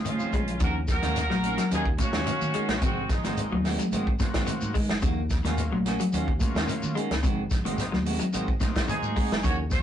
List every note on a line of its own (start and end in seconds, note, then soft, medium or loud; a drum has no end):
0.00 0.17 C#3 medium
0.00 0.31 G#3 medium
0.00 0.32 C4 medium
0.00 0.32 D#4 medium
0.00 0.32 F4 medium
0.05 0.29 D#3 medium
0.05 0.58 C#4 medium
0.05 0.58 F4 medium
0.05 closed hi-hat medium
0.05 shekere medium
0.14 high conga medium
0.19 0.37 C4 medium
0.19 0.36 F4 medium
0.19 low conga medium
0.19 shekere medium
0.32 0.58 A#1 medium
0.32 0.57 G#3 medium
0.32 kick medium
0.32 closed hi-hat soft
0.32 low conga medium
0.32 shekere soft
0.41 low conga medium
0.48 closed hi-hat soft
0.48 low conga medium
0.59 0.98 D#2 medium
0.59 0.84 C#3 medium
0.59 0.78 D#3 medium
0.59 0.78 A#3 medium
0.59 0.78 C#4 medium
0.59 0.78 F#4 medium
0.59 0.75 F#4 medium
0.59 kick medium
0.59 closed hi-hat medium
0.59 high conga soft
0.59 low conga medium
0.59 shekere medium
0.64 0.76 A#4 loud
0.88 1.68 A#4 loud
0.88 kick medium
0.88 snare soft
0.88 closed hi-hat soft
0.88 low conga medium
0.88 shekere medium
0.92 1.69 F#4 medium
1.02 1.30 D#2 medium
1.02 1.26 D#3 medium
1.02 1.36 F#3 medium
1.02 1.37 A#3 medium
1.02 1.19 A#3 soft
1.02 1.19 C#4 soft
1.02 1.37 C#4 medium
1.02 1.19 F#4 medium
1.02 1.37 F5 medium
1.02 snare soft
1.02 closed hi-hat soft
1.02 high conga medium
1.02 shekere soft
1.15 snare soft
1.15 closed hi-hat medium
1.15 high conga soft
1.15 shekere medium
1.30 1.55 A#1 medium
1.30 1.54 F#3 medium
1.30 snare soft
1.30 high conga medium
1.44 1.61 D#3 medium
1.44 1.61 A#3 medium
1.44 1.61 C#4 medium
1.44 1.61 F#4 medium
1.44 closed hi-hat medium
1.44 shekere soft
1.58 1.81 F#3 medium
1.58 snare soft
1.58 closed hi-hat soft
1.58 shekere medium
1.70 1.96 D#2 medium
1.70 1.88 D#3 medium
1.70 1.85 F#3 medium
1.70 1.85 A#3 medium
1.70 1.88 A#3 medium
1.70 1.85 C#4 medium
1.70 1.89 C#4 medium
1.70 1.86 D#4 medium
1.70 1.86 F4 medium
1.70 1.89 F#4 medium
1.70 1.86 G#4 medium
1.70 closed hi-hat medium
1.70 shekere medium
1.86 kick medium
1.98 2.22 C#3 medium
1.98 2.52 F#3 medium
1.98 2.53 A#3 medium
1.98 2.53 C#4 medium
1.98 2.79 F#4 loud
1.98 2.53 F5 medium
1.98 kick medium
1.98 closed hi-hat medium
1.98 high conga loud
1.98 shekere medium
2.02 2.79 C#4 medium
2.13 2.25 D#2 medium
2.13 2.30 A#3 soft
2.13 2.30 C#4 soft
2.13 2.30 F#4 soft
2.13 snare medium
2.13 shekere soft
2.26 2.50 D#3 medium
2.26 closed hi-hat medium
2.26 high conga medium
2.26 shekere medium
2.41 2.53 D#3 medium
2.41 shekere medium
2.54 2.72 D#3 medium
2.54 2.78 G#3 medium
2.54 2.72 A#3 medium
2.54 2.72 F#4 medium
2.54 muted fingered electric bass stroke soft
2.54 closed hi-hat medium
2.54 shekere soft
2.69 2.80 A#1 medium
2.69 snare medium
2.69 closed hi-hat medium
2.82 3.19 G#1 medium
2.82 3.05 C3 medium
2.82 2.99 G#3 medium
2.82 3.00 C4 medium
2.82 3.13 C4 medium
2.82 3.00 F#4 medium
2.82 3.09 F#4 medium
2.82 muted clean electric guitar stroke medium
2.82 kick medium
2.82 closed hi-hat medium
2.82 high conga soft
2.82 low conga medium
2.82 shekere medium
3.10 3.66 G#3 medium
3.10 3.65 D#4 medium
3.10 kick medium
3.10 snare soft
3.10 closed hi-hat medium
3.10 low conga medium
3.10 shekere medium
3.23 3.54 G#1 medium
3.23 3.48 D#3 medium
3.23 3.57 F#3 medium
3.23 3.41 G#3 soft
3.23 3.58 A#3 medium
3.23 3.40 C4 medium
3.23 3.58 C4 medium
3.23 3.58 D#4 medium
3.23 3.40 F#4 medium
3.23 snare soft
3.23 closed hi-hat medium
3.23 high conga medium
3.23 shekere soft
3.37 closed hi-hat medium
3.37 high conga soft
3.37 shekere medium
3.51 3.76 D#2 medium
3.51 3.75 F#3 medium
3.51 high conga medium
3.64 3.82 D#3 medium
3.64 3.82 G#3 medium
3.64 3.82 C4 medium
3.64 3.82 F#4 medium
3.64 snare soft
3.64 open hi-hat medium
3.64 shekere soft
3.79 4.02 F#3 medium
3.79 closed hi-hat medium
3.79 high conga medium
3.79 low conga medium
3.79 shekere medium
3.92 4.17 G#1 medium
3.92 4.09 D#3 medium
3.92 4.07 F#3 medium
3.92 4.09 G#3 medium
3.92 4.07 A#3 medium
3.92 4.10 C4 medium
3.92 4.07 C4 medium
3.92 4.07 D#4 medium
3.92 4.10 F#4 medium
3.92 closed hi-hat medium
3.92 high conga soft
3.92 shekere medium
4.07 kick medium
4.20 4.43 C#3 medium
4.20 4.74 F#3 loud
4.20 4.74 A#3 medium
4.20 4.75 C4 medium
4.20 4.75 F#4 loud
4.20 kick medium
4.20 snare soft
4.20 closed hi-hat medium
4.20 high conga loud
4.20 shekere medium
4.34 4.46 G#1 medium
4.34 4.51 G#3 soft
4.34 4.50 C4 medium
4.34 4.50 F#4 medium
4.34 kick medium
4.34 snare medium
4.34 closed hi-hat medium
4.34 shekere soft
4.47 4.70 D#3 medium
4.47 closed hi-hat medium
4.47 high conga medium
4.47 shekere medium
4.61 4.74 G#2 medium
4.61 shekere medium
4.74 4.92 D#3 medium
4.74 4.98 G#3 medium
4.74 4.92 G#3 medium
4.74 muted fingered electric bass stroke soft
4.74 kick medium
4.74 open hi-hat medium
4.74 shekere soft
4.89 5.01 F#1 medium
4.89 snare medium
4.89 closed hi-hat soft
5.02 5.40 D#2 medium
5.02 5.26 C#3 medium
5.02 5.20 D#3 medium
5.02 5.20 A#3 medium
5.02 5.20 F#4 medium
5.02 muted clean electric guitar stroke medium
5.02 kick medium
5.02 closed hi-hat medium
5.02 high conga soft
5.02 low conga medium
5.02 shekere medium
5.30 kick medium
5.30 snare soft
5.30 closed hi-hat soft
5.30 low conga medium
5.30 shekere medium
5.44 5.72 D#2 medium
5.44 5.68 D#3 medium
5.44 5.78 F#3 medium
5.44 5.78 A#3 medium
5.44 5.61 A#3 soft
5.44 5.61 C#4 medium
5.44 5.79 C#4 medium
5.44 5.79 F4 medium
5.44 5.61 F#4 medium
5.44 snare soft
5.44 closed hi-hat medium
5.44 high conga loud
5.44 shekere soft
5.58 closed hi-hat medium
5.58 high conga soft
5.58 shekere medium
5.72 5.97 A#1 medium
5.72 5.96 F#3 medium
5.72 high conga medium
5.86 6.02 A#3 medium
5.86 6.03 C#4 medium
5.86 6.03 F#4 medium
5.86 snare soft
5.86 closed hi-hat medium
5.86 shekere soft
5.99 6.23 F#3 medium
5.99 closed hi-hat soft
5.99 low conga medium
5.99 shekere medium
6.12 6.38 D#2 medium
6.12 6.30 D#3 medium
6.12 6.27 F#3 medium
6.12 6.30 A#3 medium
6.12 6.28 A#3 medium
6.12 6.31 C#4 medium
6.12 6.28 C#4 medium
6.12 6.28 F4 medium
6.12 6.30 F#4 medium
6.12 closed hi-hat medium
6.12 high conga soft
6.12 shekere medium
6.28 kick medium
6.39 6.95 F#3 medium
6.39 6.95 A#3 medium
6.39 6.95 C#4 medium
6.39 6.95 F4 loud
6.39 kick medium
6.39 closed hi-hat soft
6.39 high conga loud
6.39 shekere medium
6.55 6.66 D#2 medium
6.55 6.71 A#3 soft
6.55 6.71 C#4 medium
6.55 6.71 F#4 medium
6.55 snare medium
6.55 shekere soft
6.67 6.91 D#3 medium
6.67 closed hi-hat medium
6.67 high conga medium
6.67 shekere medium
6.82 6.95 D#3 medium
6.82 shekere medium
6.95 7.13 D#3 medium
6.95 7.19 G#3 medium
6.95 7.13 A#3 medium
6.95 7.13 C#4 medium
6.95 7.13 F#4 medium
6.95 muted fingered electric bass stroke soft
6.95 closed hi-hat medium
6.95 shekere soft
7.11 7.22 C#2 medium
7.11 snare medium
7.11 closed hi-hat soft
7.23 7.61 G#1 medium
7.23 7.46 C3 medium
7.23 7.40 D#3 medium
7.23 7.40 G#3 medium
7.23 7.41 C4 medium
7.23 7.41 F#4 medium
7.23 kick medium
7.23 closed hi-hat medium
7.23 high conga soft
7.23 low conga medium
7.23 shekere medium
7.51 kick medium
7.51 snare soft
7.51 closed hi-hat medium
7.51 low conga medium
7.51 shekere medium
7.65 7.95 G#1 medium
7.65 7.89 D#3 medium
7.65 7.98 F#3 medium
7.65 7.82 G#3 soft
7.65 7.99 A#3 medium
7.65 7.99 C4 medium
7.65 7.81 C4 medium
7.65 7.99 D#4 loud
7.65 7.81 F#4 medium
7.65 closed hi-hat medium
7.65 high conga medium
7.65 shekere soft
7.78 snare soft
7.78 closed hi-hat medium
7.78 high conga soft
7.78 shekere medium
7.92 8.18 D#2 medium
7.92 8.16 F#3 medium
7.92 snare soft
7.92 high conga medium
8.06 8.23 D#3 medium
8.06 8.23 G#3 medium
8.06 8.23 C4 medium
8.06 8.23 F#4 medium
8.06 open hi-hat medium
8.06 shekere soft
8.20 8.43 F#3 medium
8.20 closed hi-hat medium
8.20 shekere medium
8.32 8.58 G#1 medium
8.32 8.50 D#3 medium
8.32 8.47 F#3 medium
8.32 8.50 G#3 medium
8.32 8.48 A#3 medium
8.32 8.50 C4 medium
8.32 8.48 C4 medium
8.32 8.48 D#4 medium
8.32 8.51 F#4 medium
8.32 closed hi-hat medium
8.32 high conga soft
8.32 shekere medium
8.48 kick medium
8.60 8.84 C#3 medium
8.60 9.15 F#3 loud
8.60 9.15 A#3 medium
8.60 9.15 C4 medium
8.60 9.15 D#4 medium
8.60 kick medium
8.60 snare soft
8.60 closed hi-hat medium
8.60 high conga loud
8.60 shekere medium
8.75 8.87 G#1 medium
8.75 8.92 G#3 soft
8.75 8.92 C4 soft
8.75 8.91 F#4 soft
8.75 kick medium
8.75 snare medium
8.75 closed hi-hat medium
8.75 shekere soft
8.88 9.12 D#3 medium
8.88 9.40 D#4 medium
8.88 9.40 G#4 loud
8.88 closed hi-hat medium
8.88 high conga medium
8.88 shekere medium
9.02 9.14 G#2 medium
9.02 high conga medium
9.02 shekere medium
9.16 9.39 G#3 medium
9.16 9.33 G#3 medium
9.16 9.34 C4 medium
9.16 9.34 F#4 medium
9.16 muted clean electric guitar stroke medium
9.16 muted fingered electric bass stroke soft
9.16 kick medium
9.16 open hi-hat medium
9.16 shekere soft
9.31 9.42 F#1 medium
9.31 snare medium
9.31 closed hi-hat soft
9.43 9.82 D#2 medium
9.43 9.67 C#3 medium
9.43 9.60 D#3 medium
9.43 9.61 A#3 medium
9.43 9.61 C#4 medium
9.43 9.61 F#4 medium
9.43 9.57 F#4 medium
9.43 9.57 C#5 loud
9.43 kick medium
9.43 closed hi-hat medium
9.43 high conga soft
9.43 low conga medium
9.43 shekere medium
9.70 9.82 F#4 medium
9.70 9.82 C#5 loud
9.70 kick medium
9.70 snare soft
9.70 closed hi-hat soft
9.70 low conga medium
9.70 shekere medium